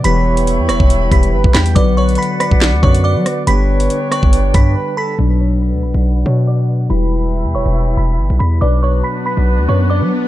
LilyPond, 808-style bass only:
\new Staff \with { instrumentName = "808-style bass" } { \clef bass \time 4/4 \key b \minor \tempo 4 = 140 e,,4~ e,,16 e,16 e,,16 e,,8. e,,8 g,,16 b,,16 e,8 | b,,4 r8. b,,8 d,16 fis,8. fis16 r8 | g,,4 r8. g,,8. g,8 r4 | b,,4~ b,,16 d,16 b,,16 b,,8. b,4. |
e,,4~ e,,16 e,16 e,,16 e,,8. e,,8 g,,16 b,,16 e,8 | b,,4 r8. b,,8 d,16 fis,8. fis16 r8 | }